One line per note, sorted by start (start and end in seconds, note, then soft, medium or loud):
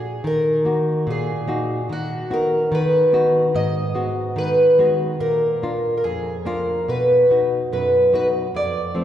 0.00 0.20 A#2 medium
0.00 0.23 G#4 medium
0.00 0.27 G#4 medium
0.24 1.05 D#3 medium
0.24 1.05 A#4 medium
0.65 1.32 A#3 soft
0.65 1.32 D#4 soft
0.65 1.32 F#4 soft
1.07 1.87 A#2 medium
1.07 1.87 G#4 medium
1.47 1.81 A#3 medium
1.47 1.81 D#4 soft
1.47 1.82 F#4 medium
1.89 2.69 D#3 medium
1.89 2.33 F#4 medium
2.30 2.97 B3 soft
2.30 2.97 D#4 soft
2.30 2.97 F#4 medium
2.30 2.74 A#4 medium
2.72 3.51 D#3 medium
2.72 3.55 B4 medium
3.13 3.46 B3 soft
3.13 3.46 D#4 soft
3.13 3.46 F#4 medium
3.55 4.34 G#2 medium
3.55 4.38 D#5 loud
3.95 4.60 G#3 soft
3.95 4.61 B3 soft
3.95 4.61 F#4 soft
4.36 5.16 D#3 medium
4.36 5.20 B4 medium
4.79 5.11 G#3 soft
4.79 5.12 B3 soft
4.79 5.12 F#4 medium
5.20 6.01 A#2 medium
5.20 5.96 A#4 medium
5.62 6.30 A#3 soft
5.62 6.30 D4 soft
5.62 6.30 F4 soft
5.97 6.04 A#4 medium
6.04 6.86 F2 medium
6.04 6.47 G#4 medium
6.45 6.79 A#3 soft
6.45 6.80 D4 soft
6.45 6.80 F4 medium
6.45 6.89 A#4 medium
6.88 7.69 B2 medium
6.88 7.68 B4 medium
7.30 7.96 B3 soft
7.30 7.96 D#4 soft
7.30 7.97 F#4 soft
7.73 8.52 F#2 medium
7.73 8.14 B4 medium
8.13 8.46 B3 medium
8.13 8.46 D#4 soft
8.13 8.46 F#4 medium
8.13 8.26 B4 medium
8.54 9.04 F2 medium
8.54 9.04 D5 loud
8.95 9.04 F3 soft
8.95 9.04 A3 soft
8.95 9.04 C4 soft